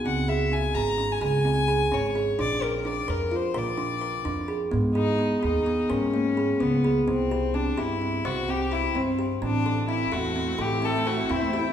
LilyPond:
<<
  \new Staff \with { instrumentName = "Violin" } { \time 5/8 \key aes \mixolydian \tempo 4 = 128 ges''8 e''8 aes''8 bes''8. aes''16 | aes''4. des''8. r16 | d''8 bes'8 d''8 bes'8 c''8 | d''2 r8 |
r8 ees'4 ees'4 | des'4. ces'8. r16 | c'4 d'8 e'4 | ges'8 g'8 e'8 c'8. r16 |
d'4 e'8 ges'4 | g'8 a'8 ges'8 e'8. r16 | }
  \new Staff \with { instrumentName = "Kalimba" } { \time 5/8 \key aes \mixolydian c'8 aes'8 des'8 aes'8 des'8 | aes'8 c'8 aes'8 des'8 aes'8 | d'8 bes'8 d'8 bes'8 f'8 | bes'8 d'8 bes'8 d'8 aes'8 |
ces'8 aes'8 ces'8 aes'8 ces'8 | bes'8 bes8 aes'8 ces'8 aes'8 | c'8 g'8 c'8 g'8 c'8 | c''8 c'8 g'8 c'8 g'8 |
c'8 a'8 c'8 a'8 c'8 | a'8 c'8 a'8 c'8 g'8 | }
  \new Staff \with { instrumentName = "Ambient pad" } { \time 5/8 \key aes \mixolydian r2 r8 | r2 r8 | r2 r8 | r2 r8 |
r2 r8 | r2 r8 | r2 r8 | r2 r8 |
<a c' e'>2~ <a c' e'>8~ | <a c' e'>2~ <a c' e'>8 | }
  \new Staff \with { instrumentName = "Upright bass" } { \clef bass \time 5/8 \key aes \mixolydian des,4. aes,,4 | des,4. aes,,4 | bes,,4. f,4 | bes,,4. f,4 |
aes,4. ees,4 | aes,4. des,4 | c,4. g,4 | c,4. g,4 |
a,,4. e,4 | a,,4. e,4 | }
>>